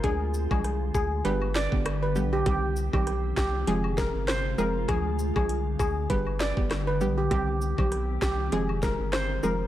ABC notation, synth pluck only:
X:1
M:4/4
L:1/16
Q:"Swing 16ths" 1/4=99
K:Cm
V:1 name="Synth pluck"
[F,A,DA] z2 [F,A,DA] z4 [D,G,=B,G] z2 [D,G,B,G] z2 [D,G,B,G] z | [E,G,CG] z2 [E,G,CG] z4 [F,A,CA]2 [F,A,CA] z3 [F,A,CA] z | [F,A,DA] z2 [F,A,DA] z4 [D,G,=B,G] z2 [D,G,B,G] z2 [D,G,B,G] z | [E,G,CG] z2 [E,G,CG] z4 [F,A,CA]2 [F,A,CA] z3 [F,A,CA] z |]